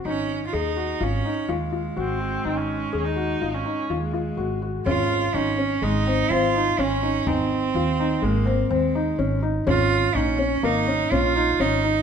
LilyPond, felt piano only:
\new Staff \with { instrumentName = "Felt piano" } { \time 5/4 \key aes \mixolydian \tempo 4 = 125 ees'4 aes'8 ges'8 f'8 ees'8 f'8 f'8 ges'8 ges'8 | ees'4 aes'8 ges'8 f'8 ees'8 f'8 f'8 ges'8 ges'8 | des'4 ees'8 des'8 aes8 c'8 c'8 ees'8 des'8 ees'8 | ees'4 f'8 ees'8 aes8 c'8 c'8 ees'8 des'8 ees'8 |
des'4 ees'8 des'8 bes8 des'8 des'8 ees'8 des'8 ees'8 | }